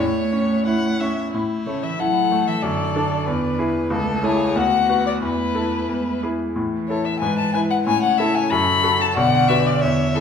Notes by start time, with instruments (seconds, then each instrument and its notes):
0.00 grand piano A2, cello A3, violin C#5
0.33 grand piano C#4
0.66 grand piano E4, violin F#5
1.00 grand piano C#4, violin E5
1.33 grand piano A2, violin E4
1.66 cello C#3, grand piano A3, violin C#5
1.83 cello E3, violin E5
1.98 cello F#3, grand piano E4, violin A4 F#5
2.32 grand piano A3
2.47 cello E3, violin E5
2.62 grand piano F#2, cello D3, violin D5
2.96 grand piano D4 A4
3.26 grand piano E2, violin B4
3.59 grand piano E4 G#4
3.90 grand piano C#2, cello A3, violin A4
4.22 grand piano E4 A4, violin G#4 C#5
4.56 grand piano D2, cello B3, violin F#4 F#5
4.89 grand piano F#4 B4
5.06 violin D5
5.21 grand piano E2, cello A3, violin E4 B4
5.55 grand piano E4 A4
5.89 grand piano E2, cello G#3
6.23 grand piano E4 G#4
6.56 grand piano A2, cello E3
6.88 grand piano E4 A4, violin C#5
7.05 violin E5
7.20 grand piano G#2, violin B4 G#5
7.38 violin A5
7.53 grand piano E4 B4, violin G#5
7.70 violin F#5
7.86 grand piano A2, cello C#3, violin C#5 G#5
8.03 violin F#5
8.18 grand piano E4 A4, violin E5
8.35 violin G#5
8.51 grand piano F#2, violin A4 B5
8.84 grand piano F#4 A4
9.01 violin A5
9.16 grand piano B1, cello D3, violin D5 F#5
9.48 grand piano F#4 B4, violin E5
9.67 violin D5
9.81 grand piano E2, violin C#5 E5
10.15 grand piano E4 G#4, violin A4